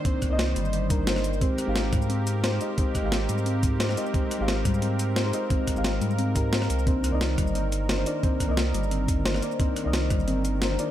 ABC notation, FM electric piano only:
X:1
M:4/4
L:1/16
Q:"Swing 16ths" 1/4=176
K:Ablyd
V:1 name="FM electric piano"
[B,DEc]3 [B,Ede]6- [B,Ede] [B,DEB] z4 z | [A,EGc]3 [A,EGf]8- [A,EGf]2 [A,EGc] [A,EGe]2 | [A,EGc]3 [A,EGf]8- [A,EGf]2 [A,EGc] [A,EGe]2 | [A,EGc]3 [A,EGf]8- [A,EGf]2 [A,EGc] [A,EGe]2 |
[A,EGc]3 [A,EGf]6- [A,EGf] [A,EGB] z4 z | [B,DEc]3 [B,Ede]8- [B,Ede]2 [B,DEc] [B,DEd]2 | [B,DEc]3 [B,Ede]8- [B,Ede]2 [B,DEc] [B,DEd]2 | [B,DEc]3 [B,Ede]8- [B,Ede]2 [B,DEc] [B,DEd]2 |]